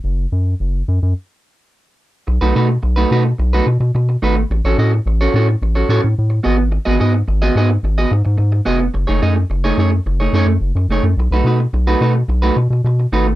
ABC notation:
X:1
M:4/4
L:1/16
Q:1/4=108
K:Bmix
V:1 name="Clean electric guitar"
z16 | z [A,DFB] [A,DFB] z2 [A,DFB] [A,DFB] z2 [A,DFB] z4 [A,DFB] z | z [CFAc] [CFAd] z2 [CFAc] [CFAc] z2 [CFAc] [CFAc] z3 [B,FGd] z | z [B,FGd] [B,FGd] z2 [B,FGd] [B,FGd] z2 [B,FGd] z4 [B,FGd] z |
z [A,DGc] [A,DGd] z2 [A,DGc] [A,DGc] z2 [A,DGc] [A,DGc] z3 [A,DGc] z | z [A,DFB] [A,DFB] z2 [A,DFB] [A,DFB] z2 [A,DFB] z4 [A,DFB] z |]
V:2 name="Analog synth bass" clef=bass
F,,,2 F,,2 F,,,2 F,, F,, z8 | B,,, B,,, B,,2 B,,,2 B,,2 B,,,2 B,, B,, B,,2 G,,,2 | A,,, A,,, A,,2 A,,,2 A,,2 A,,,2 A,, A,, A,,2 G,,,2- | G,,, G,,, G,,2 G,,,2 G,,2 G,,,2 G,, G,, G,,2 ^E,,,2 |
F,,, F,,, F,,2 F,,,2 F,,2 F,,,2 F,, F,, F,,, F,, F,,, F,, | B,,, B,,, B,,2 B,,,2 B,,2 B,,,2 B,, B,, B,,2 G,,,2 |]